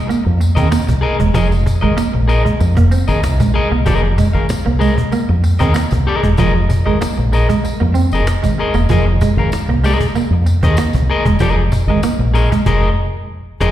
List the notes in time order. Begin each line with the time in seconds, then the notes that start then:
0.07 A#3, muted clean electric guitar stroke, muted fingered electric bass stroke, cajon slap, tambourine
0.24 F2, muted clean electric guitar stroke, cajon slap
0.40 muted clean electric guitar stroke, cajon slap, tambourine
0.55 D#2 C4 G#4 A#4 D#5, cajon bass, tambourine
0.70 A#3, muted clean electric guitar stroke, muted fingered electric bass stroke, cajon slap, tambourine
0.87 C2, muted clean electric guitar stroke, cajon bass, tambourine
1.01 G#4 A#4 D#5, cajon slap
1.19 E1 G#3, muted clean electric guitar stroke, cajon bass, cajon slap
1.34 F1 F3 G#4 A#4 D#5, cajon bass, tambourine
1.50 muted clean electric guitar stroke, cajon slap, tambourine
1.66 muted clean electric guitar stroke, cajon bass, tambourine
1.81 G#1 G#3 G#4 A#4 D#5, cajon slap
1.97 A#3, muted fingered electric bass stroke, cajon slap, tambourine
2.13 A#1, muted clean electric guitar stroke, cajon slap
2.28 G#4 A#4 D#5, muted clean electric guitar stroke, cajon slap, tambourine
2.45 G#3, muted clean electric guitar stroke, cajon bass, cajon slap
2.60 F2, muted clean electric guitar stroke, tambourine
2.75 F1 A#3, muted clean electric guitar stroke, cajon bass
2.91 C4, cajon slap, tambourine
3.08 G#1 G#4 A#4 D#5, tambourine
3.23 C2, muted clean electric guitar stroke, cajon slap, tambourine
3.40 A#1 G#3, muted clean electric guitar stroke, cajon bass, tambourine
3.54 G#4 A#4 D#5, muted clean electric guitar stroke
3.71 C2 A#3, muted clean electric guitar stroke, cajon slap
3.86 F1 F3 G#4 A#4 D#5, cajon bass, tambourine
4.03 muted clean electric guitar stroke, cajon slap
4.17 G#3, muted clean electric guitar stroke, cajon bass, tambourine
4.33 G#1 G#4 A#4 F5, cajon slap
4.49 muted clean electric guitar stroke, muted fingered electric bass stroke, cajon slap, tambourine
4.65 C2 A#3, muted clean electric guitar stroke
4.79 G#3 G#4 A#4 D#5, cajon slap, tambourine
4.97 muted clean electric guitar stroke, cajon bass
5.12 A#3, muted clean electric guitar stroke, muted fingered electric bass stroke, cajon slap, tambourine
5.28 F2, muted clean electric guitar stroke, cajon slap
5.43 muted clean electric guitar stroke, cajon slap, tambourine
5.59 D#2 C4 G#4 A#4 D#5, cajon bass, tambourine
5.74 A#3, muted fingered electric bass stroke, muted clean electric guitar stroke, cajon slap, tambourine
5.91 C2, muted clean electric guitar stroke, cajon bass, tambourine
6.07 G#4 A#4 D#5, cajon slap
6.23 E1 G#3, muted clean electric guitar stroke, cajon bass, cajon slap
6.37 F1 F3 G#4 A#4 D#5, cajon bass, tambourine
6.54 muted clean electric guitar stroke, cajon slap
6.69 muted clean electric guitar stroke, cajon bass, tambourine
6.86 G#1 G#3 G#4 A#4 D#5, cajon slap
7.01 A#3, muted fingered electric bass stroke, cajon slap, tambourine
7.18 A#1, muted clean electric guitar stroke
7.32 G#4 A#4 D#5, muted clean electric guitar stroke, cajon slap, tambourine
7.49 G#3, muted clean electric guitar stroke, cajon bass, cajon slap, tambourine
7.65 muted fingered electric bass stroke, muted clean electric guitar stroke, tambourine
7.80 F2 A#3, muted clean electric guitar stroke, cajon slap
7.94 C4, cajon slap, tambourine
8.12 F1 G#4 A#4 D#5, cajon slap, tambourine
8.26 muted fingered electric bass stroke, muted clean electric guitar stroke, cajon slap, tambourine
8.43 G#1 G#3, muted clean electric guitar stroke, cajon bass, tambourine
8.58 G#4 A#4 D#5, muted clean electric guitar stroke
8.74 E1 A#3, muted clean electric guitar stroke, cajon slap, tambourine
8.89 F1 F3 G#4 A#4 D#5, cajon bass, tambourine
9.07 muted clean electric guitar stroke, cajon slap
9.21 G#3, muted clean electric guitar stroke, cajon bass, tambourine
9.37 G#1 G#4 A#4 F5, cajon slap
9.52 muted fingered electric bass stroke, muted clean electric guitar stroke, cajon slap, tambourine
9.68 C2 A#3, muted clean electric guitar stroke
9.83 G#3 G#4 A#4 D#5, cajon slap, tambourine
10.00 muted clean electric guitar stroke, cajon bass, tambourine
10.14 A#3, muted fingered electric bass stroke, muted clean electric guitar stroke, cajon slap, tambourine
10.30 F2, muted clean electric guitar stroke, cajon slap
10.46 muted clean electric guitar stroke, cajon slap, tambourine
10.63 D#2 C4 G#4 A#4 D#5, cajon bass
10.77 A#3, muted fingered electric bass stroke, muted clean electric guitar stroke, cajon slap, tambourine
10.93 C2, muted clean electric guitar stroke, cajon bass, tambourine
11.09 G#4 A#4 D#5, cajon slap
11.25 E1 G#3, muted clean electric guitar stroke, cajon bass, cajon slap
11.39 F1 F3 G#4 A#4 D#5, cajon bass, tambourine
11.57 muted clean electric guitar stroke, cajon slap
11.72 muted clean electric guitar stroke, cajon bass, tambourine
11.87 G#1 G#3 G#4 A#4 D#5, cajon slap
12.02 A#3, muted fingered electric bass stroke, cajon slap, tambourine
12.19 A#1, muted clean electric guitar stroke, cajon slap
12.34 G#4 A#4 D#5, muted clean electric guitar stroke, cajon slap, tambourine
12.52 G#3, muted clean electric guitar stroke, cajon bass, cajon slap, tambourine
12.66 F1 G#4 A#4 D#5, cajon bass, cajon slap
13.61 F1 G#4 A#4 D#5, cajon bass, cajon slap